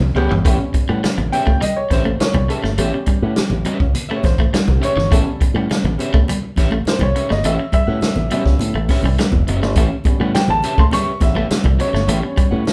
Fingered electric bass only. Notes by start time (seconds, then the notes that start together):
0.00 C2
0.15 C#2
0.30 G1
0.45 A1
0.74 muted fingered electric bass stroke
0.89 A2
1.04 muted fingered electric bass stroke
1.18 A1
1.47 C#2
1.91 A1
2.20 muted fingered electric bass stroke
2.35 C2
2.63 G1
2.78 A1
3.07 muted fingered electric bass stroke
3.22 A2
3.38 muted fingered electric bass stroke
3.51 A1
3.81 C#2
4.24 A1
4.54 muted fingered electric bass stroke
4.68 C2
4.96 G1
5.12 A1
5.41 muted fingered electric bass stroke
5.54 A2
5.70 muted fingered electric bass stroke
5.84 A1
6.14 C#2
6.58 A1
6.86 muted fingered electric bass stroke
7.01 C2
7.31 G1
7.44 A1
7.73 muted fingered electric bass stroke
7.88 A2
8.02 muted fingered electric bass stroke
8.16 A1
8.46 C#2
8.60 A2
8.74 A1
9.04 C2
9.33 E1
9.48 F#1
9.62 G1
9.76 A1
10.05 muted fingered electric bass stroke
10.20 A2
10.35 muted fingered electric bass stroke
10.48 A1
10.78 C#2
11.21 A1
11.50 muted fingered electric bass stroke
11.65 C2
11.93 G1
12.08 A1
12.37 muted fingered electric bass stroke
12.52 A2
12.67 muted fingered electric bass stroke